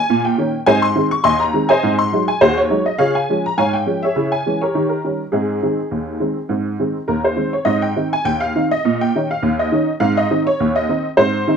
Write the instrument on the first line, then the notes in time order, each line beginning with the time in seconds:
honky-tonk piano
Already playing: G#5
0.10 A#2
0.25 G5
0.38 D#3 A#3 C#4
0.66 G#2 C4 C5 D#5 G#5
0.82 C6
0.95 D#3 G#3 C4
1.11 C#6
1.24 D#2 D#5 G#5 C6
1.40 A#5
1.54 D#3 G#3 C4
1.69 C5 D#5 G#5
1.83 G#2 C4
1.99 C6
2.12 F#3 G#3 D#4
2.28 G#5
2.41 D#2 F#4 G#4 C5
2.58 C#5
2.70 F#3 G#3 D#4
2.86 D#5
2.98 C#3 F4 G#4 C#5 F5
3.15 G#5
3.29 F3 G#3 C#4
3.46 A#5
3.58 G#2 C#5 F5 G#5
3.73 G5
3.86 F3 G#3 C#4
4.03 G#4 C#5 E5
4.16 C#3 E4
4.32 G#5
4.46 E3 G#3 C#4
4.61 G4 A#4 C#5
4.75 D#3 G4
4.89 A#4
5.04 D#3 G3 C#4
5.32 G#2 C4 D#4 G#4
5.63 D#3 G#3 C4
5.91 D#2
6.20 D#3 G#3 C4
6.49 G#2 C4
6.79 D#3 G#3 C4
7.08 D#2 A#4
7.24 C5
7.37 D#3 G#3 C4
7.53 C#5
7.65 G#2 C4 D#5
7.82 G5
7.96 D#3 C4 D#4
8.13 G#5
8.25 D#2 G5
8.40 F5
8.55 D#3 C4 D#4
8.71 D#5
8.85 A#2
9.01 G5
9.15 D#3 C#4 D#4
9.31 F5
9.42 D#2
9.59 D#5
9.72 D#3 C#4 D#4
10.00 G#2 C4 F5
10.17 D#5
10.31 D#3 C4 D#4
10.47 C#5
10.60 D#2
10.76 D#5
10.89 D#3 C4 D#4
11.17 G#2 C4 C5
11.48 D#3 C4 D#4